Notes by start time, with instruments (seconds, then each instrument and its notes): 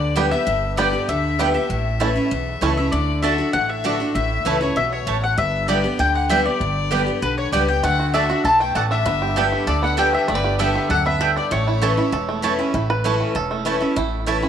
Already playing: upright bass D2, steel-string acoustic guitar D3, mandolin D5, fiddle D5
0.16 steel-string acoustic guitar D3 G3 B3 G4, mandolin B3 G4 D5 G5, five-string banjo B3 D4 G4
0.31 steel-string acoustic guitar B3 G4, mandolin E5, fiddle E5
0.47 upright bass G1, steel-string acoustic guitar G2
0.77 steel-string acoustic guitar D3 G3 B3 G4, mandolin B3 G4 D5 G5, five-string banjo B3 D4 G4, fiddle D5
0.93 steel-string acoustic guitar B3 G4
1.08 upright bass D2, steel-string acoustic guitar D3, mandolin E5, fiddle E5
1.39 steel-string acoustic guitar D3 G3 B3 G4, mandolin B3 G4 D5 G5, five-string banjo B3 D4 G4
1.54 steel-string acoustic guitar B3 G4, mandolin E5, fiddle E5
1.70 upright bass A1, steel-string acoustic guitar A2
2.00 steel-string acoustic guitar E3 A3 C#4 E4, mandolin A3 E4 C#5 A5, five-string banjo A3 C#4 E4
2.16 steel-string acoustic guitar C#4 E4
2.31 upright bass B1, steel-string acoustic guitar E2
2.61 upright bass C#2, steel-string acoustic guitar E3 A3 C#4 E4, mandolin A3 E4 C#5 A5, five-string banjo A3 C#4 E4
2.77 steel-string acoustic guitar C#4 E4, mandolin E5, fiddle E5
2.92 upright bass D2, steel-string acoustic guitar D3, mandolin D5, fiddle D5
3.22 steel-string acoustic guitar D3 A3 D4 F#4, mandolin A3 F#4 D5 E5 A5, fiddle E5
3.38 steel-string acoustic guitar D4 F#4
3.53 upright bass A1, steel-string acoustic guitar A2, mandolin F#5, fiddle F#5
3.69 mandolin E5, fiddle E5
3.84 steel-string acoustic guitar D3 A3 D4 F#4, mandolin A3 F#4 D5 A5
4.00 steel-string acoustic guitar D4 F#4
4.15 upright bass A1, steel-string acoustic guitar A2, mandolin E5, fiddle E5
4.45 upright bass C#2, steel-string acoustic guitar E3 A3 C#4 E4, mandolin A3 E4 C#5 A5
4.61 steel-string acoustic guitar C#4 E4, fiddle C#5, mandolin C#5
4.76 upright bass B1, steel-string acoustic guitar B2, fiddle E5, mandolin E5
4.91 fiddle C#5, mandolin C#5
5.07 upright bass A1, steel-string acoustic guitar A2, mandolin A3 E4 C#5 A5
5.22 fiddle F#5, mandolin F#5
5.38 upright bass G1, steel-string acoustic guitar G2, fiddle E5, mandolin E5
5.68 steel-string acoustic guitar D3 G3 B3 G4, mandolin B3 G4 D5 G5, fiddle D5
5.84 steel-string acoustic guitar B3 G4
5.99 upright bass D2, steel-string acoustic guitar D3, fiddle G5, mandolin G5
6.15 mandolin F#5, fiddle F#5
6.29 steel-string acoustic guitar D3 G3 B3 G4, mandolin B3 G4 D5 E5 G5, fiddle E5
6.45 steel-string acoustic guitar B3 G4, fiddle D5, mandolin D5
6.60 upright bass G1, steel-string acoustic guitar G2
6.91 steel-string acoustic guitar D3 G3 B3 G4, mandolin B3 G4 D5 G5
7.07 steel-string acoustic guitar B3 G4
7.22 upright bass B1, steel-string acoustic guitar D3, mandolin B4, fiddle B4
7.38 mandolin C#5, fiddle C#5
7.52 upright bass C#2, steel-string acoustic guitar D3 G3 B3 G4, mandolin B3 G4 D5 G5, fiddle D5
7.68 steel-string acoustic guitar B3 G4, mandolin G5, fiddle G5
7.83 upright bass D2, steel-string acoustic guitar D3, five-string banjo A3, fiddle F#5, mandolin F#5
7.99 five-string banjo F#4
8.14 steel-string acoustic guitar D3 A3 D4 F#4, mandolin A3 F#4 D5 E5 A5, five-string banjo A4, fiddle E5
8.30 steel-string acoustic guitar D4 F#4, five-string banjo F#4
8.44 upright bass B1, steel-string acoustic guitar B2, five-string banjo A4, mandolin A5, fiddle A5
8.60 five-string banjo A3, fiddle G5, mandolin G5
8.75 upright bass A1, steel-string acoustic guitar A2, mandolin A3 F#4 D5 F#5 A5, five-string banjo A4, fiddle F#5
8.91 five-string banjo D4, fiddle E5, mandolin E5
9.06 upright bass G1, steel-string acoustic guitar G2, five-string banjo B3
9.22 five-string banjo G4
9.36 steel-string acoustic guitar D3 G3 B3 G4, mandolin B3 G4 D5 G5, five-string banjo A4
9.52 five-string banjo G4
9.67 upright bass D2, steel-string acoustic guitar D3, five-string banjo A4, mandolin D5, fiddle D5
9.83 five-string banjo B3, mandolin F#5, fiddle F#5
9.97 steel-string acoustic guitar D3 G3 B3 G4, mandolin B3 G4 D5 G5, five-string banjo A4, fiddle G5
10.13 five-string banjo D4, mandolin E5, fiddle E5
10.28 upright bass G1, steel-string acoustic guitar G2, five-string banjo A3, mandolin D5, fiddle D5
10.35 five-string banjo B3
10.44 five-string banjo G4
10.59 steel-string acoustic guitar D3 G3 B3 G4, mandolin B3 G4 D5 E5 G5, five-string banjo A4, fiddle E5
10.75 five-string banjo G4
10.89 upright bass D2, steel-string acoustic guitar F#2, five-string banjo A4, mandolin F#5, fiddle F#5
11.06 five-string banjo B3, mandolin E5, fiddle E5
11.21 steel-string acoustic guitar G2, mandolin B3 G4 D5 G5, five-string banjo A4
11.36 five-string banjo D4, fiddle D5, mandolin D5
11.51 upright bass A1, steel-string acoustic guitar A2, five-string banjo A3, mandolin C#5, fiddle C#5
11.67 five-string banjo E4
11.82 steel-string acoustic guitar E3 A3 C#4 E4, mandolin A3 E4 C#5 A5, five-string banjo A4
11.97 steel-string acoustic guitar C#4 E4, five-string banjo E4
12.12 upright bass E1, steel-string acoustic guitar E2, five-string banjo A4
12.29 five-string banjo A3
12.42 steel-string acoustic guitar E3 A3 C#4 E4, mandolin A3 E4 C#5 A5, five-string banjo A4
12.59 five-string banjo C#4, steel-string acoustic guitar C#4 E4
12.74 upright bass A1, steel-string acoustic guitar A2, five-string banjo E4
12.90 five-string banjo B4
13.04 steel-string acoustic guitar E3 A3 C#4 E4, mandolin A3 E4 C#5 A5, five-string banjo E4
13.21 five-string banjo C#4
13.35 upright bass E1, steel-string acoustic guitar E2, five-string banjo A4
13.51 five-string banjo A3
13.65 steel-string acoustic guitar E3 A3 C#4 E4, mandolin A3 E4 C#5 A5, five-string banjo E4
13.80 steel-string acoustic guitar C#4 E4, five-string banjo A4
13.96 upright bass A1, steel-string acoustic guitar A2, five-string banjo E4
14.26 steel-string acoustic guitar E3 A3 C#4 E4, mandolin A3 E4 C#5 A5, five-string banjo E4
14.42 five-string banjo C#4, steel-string acoustic guitar C#4 E4